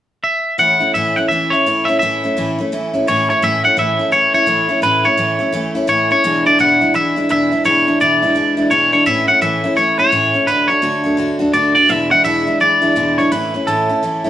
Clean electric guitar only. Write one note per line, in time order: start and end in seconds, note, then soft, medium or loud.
0.24 0.59 E5 medium
0.59 0.94 F#5 loud
0.94 1.16 E5 medium
1.16 1.28 F#5 medium
1.28 1.52 E5 medium
1.50 1.88 C#5 medium
1.85 1.98 E5 medium
1.99 3.24 E5 medium
3.08 3.29 C#5 loud
3.30 3.43 C#5 medium
3.44 3.64 E5 loud
3.65 3.76 F#5 medium
3.79 4.12 E5 loud
4.12 4.33 C#5 loud
4.34 4.79 C#5 loud
4.83 5.06 B4 loud
5.05 5.72 C#5 medium
5.89 6.09 C#5 medium
6.12 6.46 C#5 medium
6.47 6.60 D5 loud
6.61 6.93 F#5 medium
6.95 7.30 E5 loud
7.31 7.64 E5 loud
7.66 8.01 C#5 loud
8.01 8.68 D5 medium
8.71 8.92 C#5 medium
8.93 9.06 C#5 medium
9.06 9.28 E5 loud
9.28 9.42 F#5 medium
9.42 9.76 E5 medium
9.77 9.98 C#5 medium
9.99 10.49 C#5 loud
10.47 10.68 B4 loud
10.68 11.36 C#5 medium
11.54 11.74 D5 medium
11.75 11.89 D5 medium
11.89 12.11 E5 loud
12.11 12.24 F#5 loud
12.25 12.58 E5 medium
12.61 13.20 D5 loud
13.18 13.32 C#5 medium
13.32 13.68 B4 loud
13.67 14.30 A4 medium